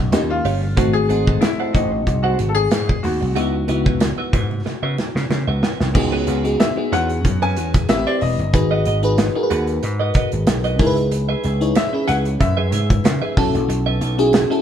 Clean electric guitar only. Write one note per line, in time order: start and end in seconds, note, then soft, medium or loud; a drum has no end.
0.30 muted clean electric guitar stroke soft
0.45 0.64 G4 medium
0.45 0.61 C#5 medium
0.45 0.61 F5 medium
0.62 muted clean electric guitar stroke soft
0.77 0.96 A4 medium
0.77 0.97 C5 medium
0.77 0.97 F#5 medium
1.09 1.25 A4 medium
1.09 1.25 C5 medium
1.09 1.25 F#5 medium
1.27 1.41 A4 soft
1.27 1.40 C5 medium
1.27 1.40 F#5 medium
1.42 muted clean electric guitar stroke soft
1.60 1.73 A4 medium
1.60 1.74 C5 medium
1.60 1.74 F#5 medium
1.74 1.90 A4 medium
1.74 1.90 C5 medium
1.74 1.90 F#5 medium
1.92 muted clean electric guitar stroke soft
2.07 muted clean electric guitar stroke soft
2.24 2.38 A4 medium
2.24 2.38 C5 medium
2.24 2.39 F#5 medium
2.39 muted clean electric guitar stroke soft
2.56 muted clean electric guitar stroke soft
2.71 muted clean electric guitar stroke soft
2.88 muted clean electric guitar stroke soft
3.21 muted clean electric guitar stroke soft
3.36 3.55 F#4 medium
3.36 3.56 B4 medium
3.36 3.56 E5 medium
3.68 3.84 F#4 medium
3.68 3.84 B4 medium
3.68 3.84 E5 medium
3.85 4.00 F#4 medium
3.85 3.99 B4 medium
3.85 3.99 E5 medium
4.01 muted clean electric guitar stroke soft
4.18 4.32 F#4 medium
4.18 4.32 B4 medium
4.18 4.33 E5 medium
4.33 4.49 F#4 medium
4.33 4.49 B4 medium
4.33 4.49 E5 medium
4.50 muted clean electric guitar stroke soft
4.66 muted clean electric guitar stroke soft
4.83 4.97 F#4 medium
4.83 4.97 B4 medium
4.83 4.98 E5 medium
4.98 muted clean electric guitar stroke soft
5.16 muted clean electric guitar stroke soft
5.31 muted clean electric guitar stroke soft
5.48 5.61 F#4 medium
5.48 5.62 B4 medium
5.48 5.62 E5 medium
5.62 5.78 F#4 medium
5.62 5.79 B4 medium
5.62 5.79 E5 medium
5.80 muted clean electric guitar stroke soft
5.95 muted clean electric guitar stroke soft
6.12 6.26 C#4 medium
6.12 6.27 F#4 medium
6.12 6.27 B4 medium
6.28 6.43 C#4 medium
6.28 6.43 F#4 medium
6.28 6.44 B4 medium
6.46 muted clean electric guitar stroke soft
6.77 muted clean electric guitar stroke soft
6.92 7.12 C#4 medium
6.92 7.10 F#4 medium
6.92 7.09 B4 medium
7.10 muted clean electric guitar stroke soft
7.25 muted clean electric guitar stroke soft
7.42 7.56 C#4 medium
7.42 7.56 F#4 medium
7.42 7.57 B4 medium
7.57 7.73 C#4 medium
7.57 7.73 F#4 medium
7.57 7.73 B4 medium
7.75 muted clean electric guitar stroke soft
7.90 muted clean electric guitar stroke soft
8.07 8.20 G4 medium
8.07 8.21 C5 medium
8.07 8.21 E5 medium
8.21 muted clean electric guitar stroke soft
8.39 muted clean electric guitar stroke soft
8.54 muted clean electric guitar stroke soft
8.71 8.84 F#4 medium
8.71 8.85 B4 medium
8.71 8.86 D#5 medium
8.86 9.01 F#4 medium
8.86 9.02 B4 medium
8.86 9.02 D#5 medium
9.03 muted clean electric guitar stroke soft
9.35 muted clean electric guitar stroke soft
9.50 9.70 F#4 medium
9.50 9.68 B4 medium
9.50 9.68 F#5 medium
9.68 muted clean electric guitar stroke soft
9.83 muted clean electric guitar stroke soft
10.00 10.14 F#4 medium
10.00 10.15 B4 medium
10.00 10.15 D#5 medium
10.15 10.31 F#4 medium
10.15 10.31 B4 medium
10.15 10.31 D#5 medium
10.33 muted clean electric guitar stroke soft
10.47 muted clean electric guitar stroke soft
10.64 10.79 F#4 medium
10.64 10.78 B4 medium
10.64 10.80 D#5 medium
10.79 10.95 G#4 medium
10.79 10.95 B4 medium
10.79 10.95 E5 medium
10.97 muted clean electric guitar stroke soft
11.12 muted clean electric guitar stroke soft
11.29 11.43 G#4 medium
11.29 11.44 B4 medium
11.29 11.44 E5 medium
11.44 11.59 G#4 medium
11.44 11.60 B4 medium
11.44 11.60 E5 medium
11.61 muted clean electric guitar stroke soft
11.93 muted clean electric guitar stroke soft
12.08 12.27 G#4 medium
12.08 12.25 B4 medium
12.08 12.24 E5 medium
12.25 muted clean electric guitar stroke soft
12.40 muted clean electric guitar stroke soft
12.57 12.71 G#4 medium
12.57 12.72 B4 medium
12.57 12.72 E5 medium
12.72 12.88 G#4 medium
12.72 12.88 B4 medium
12.72 12.89 E5 medium
12.90 muted clean electric guitar stroke soft
13.04 muted clean electric guitar stroke soft
13.22 13.36 G#4 medium
13.22 13.36 B4 medium
13.22 13.36 E5 medium
13.37 muted clean electric guitar stroke soft
13.55 muted clean electric guitar stroke soft
13.69 muted clean electric guitar stroke soft
13.86 14.00 A4 medium
13.86 14.01 B4 medium
13.86 14.01 E5 medium
14.01 14.17 A4 medium
14.01 14.17 B4 medium
14.01 14.17 E5 medium
14.18 muted clean electric guitar stroke soft
14.51 muted clean electric guitar stroke soft